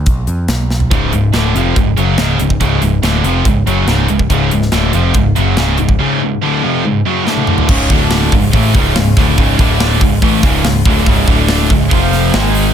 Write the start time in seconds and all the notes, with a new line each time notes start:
0.06 B1, kick, closed hi-hat
0.27 F2, closed hi-hat
0.48 B1, snare, closed hi-hat
0.70 snare
0.80 floor tom
0.91 C#1 C#2 G#2 C#3, kick, closed hi-hat
1.13 C#1 C#2 G#2, closed hi-hat
1.33 D1 D2 A2 D3, snare, closed hi-hat
1.55 F1 F2 C3 F3, closed hi-hat
1.76 C#1 C#2 G#2, kick, closed hi-hat
1.96 F#1 F#2 C#3 F#3, closed hi-hat
2.18 C#1 C#2 G#2 C#3, snare, closed hi-hat
2.39 C#1 C#2 G#2, closed hi-hat
2.50 kick
2.60 C#1 C#2 G#2 C#3, kick, closed hi-hat
2.81 C#1 C#2 G#2, closed hi-hat
3.02 D1 D2 A2 D3, snare, closed hi-hat
3.24 F1 F2 C3 F3, closed hi-hat
3.45 C#1 C#2 G#2, kick, closed hi-hat
3.66 F#1 F#2 C#3 F#3, closed hi-hat
3.86 C#1 C#2 G#2 C#3, snare, closed hi-hat
4.08 C#1 C#2 G#2, closed hi-hat
4.19 kick
4.30 C#1 C#2 G#2 C#3, kick, closed hi-hat
4.51 C#1 C#2 G#2, closed hi-hat
4.62 snare
4.72 D1 D2 A2 D3, snare, closed hi-hat
4.93 F1 F2 C3 F3, closed hi-hat
5.14 C#1 C#2 G#2, kick, closed hi-hat
5.36 F#1 F#2 C#3 F#3, closed hi-hat
5.57 C#1 C#2 G#2 C#3, snare, closed hi-hat
5.78 C#1 C#2 G#2, closed hi-hat
5.89 kick
5.99 C#2 G#2 C#3
6.21 C#2 G#2
6.42 D2 A2 D3
6.64 F2 C3 F3
6.85 C#2 G#2
7.07 F#2 C#3 F#3
7.27 D2 A2 D3, snare
7.37 high tom
7.47 mid tom
7.58 floor tom
7.68 C#1 C#2 G#2 C#3 C#4 G#4 C#5 F5, kick, crash
7.90 D1 D2 A2 D3 A3 D4 D5, kick, open hi-hat
8.10 snare, open hi-hat
8.32 C#1 C#2 G#2 C#3 G#3 C#4 F4, kick, open hi-hat
8.53 A1 A2 E3 A3, kick, open hi-hat
8.74 C#1 C#2 G#2 C#3, kick, open hi-hat
8.96 C#1 C#2 G#2, snare, open hi-hat
9.17 D1 D2 A2 D3, kick, snare, open hi-hat
9.38 C#1 C#2 G#2 C#3, kick, open hi-hat
9.59 D1 D2 A2 D3 A3 D4 D5, kick, open hi-hat
9.80 snare, open hi-hat
10.01 C#1 C#2 G#2 C#3 G#3 C#4 F4, kick, open hi-hat
10.22 A1 A2 E3 A3, kick, open hi-hat
10.43 C#1 C#2 G#2 C#3, kick, snare, open hi-hat
10.64 C#1 C#2 G#2, snare, open hi-hat
10.85 D1 D2 A2 D3, kick
11.06 C#1 C#2 G#2 C#3, kick, open hi-hat
11.27 D1 D2 A2 D3 A3 D4 D5, kick, open hi-hat
11.48 snare, open hi-hat
11.70 C#1 C#2 G#2 C#3 G#3 C#4 F4, kick, open hi-hat
11.91 F1 F2 C3 F3 C4 F5, kick, open hi-hat
12.13 snare, open hi-hat
12.33 G#1 G#2 D#3 G#3 D#4 G#4 G#5, snare, open hi-hat
12.55 open hi-hat